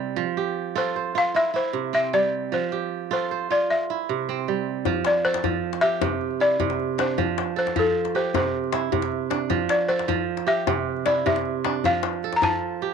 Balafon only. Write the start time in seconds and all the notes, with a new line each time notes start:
0.78 C5
1.18 F5
1.36 E5
1.56 C5
1.95 E5
2.14 D5
2.54 C5
3.13 C5
3.52 D5
3.70 E5
5.07 D5
5.25 C5
5.81 E5
6.41 D5
7.00 C5
7.59 C5
7.79 A4
8.16 C5
8.37 C5
9.70 D5
9.88 C5
10.48 E5
11.06 D5
11.26 E5
11.86 F5
12.36 A#5
12.43 A5